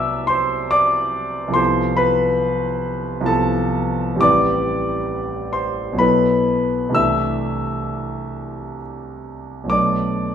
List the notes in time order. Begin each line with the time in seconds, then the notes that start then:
Already playing: C2 F#3 B3 E4 F#4 D5 E5 D6 E6
0.27 C5 C6
0.71 D5 D6
1.48 C2 F3
1.52 B3 E4 A4 C5 C6
1.97 B4 B5
3.21 C2 F3 B3
3.25 E4 A4 A5
4.16 A1 G3 C4 E4
4.21 B4 D5 D6
5.53 C5 C6
5.93 B1 F#3 B3
5.98 E4 A4 B4 B5
6.89 C2 E3 A3
6.94 D4 G4 E5 E6
9.64 B1 F#3 A3
9.69 B3 D4 D5 D6